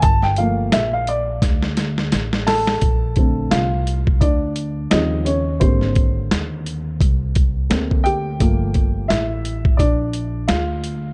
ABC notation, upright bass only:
X:1
M:4/4
L:1/8
Q:"Swing 16ths" 1/4=86
K:Gm
V:1 name="Upright bass" clef=bass
G,,,2 B,,,2 D,,2 A,,,2 | B,,,2 C,,2 D,,2 E,,2 | _A,,,2 E,,2 C,,2 D,,2 | G,,,2 A,,,2 B,,,2 D,,2 |]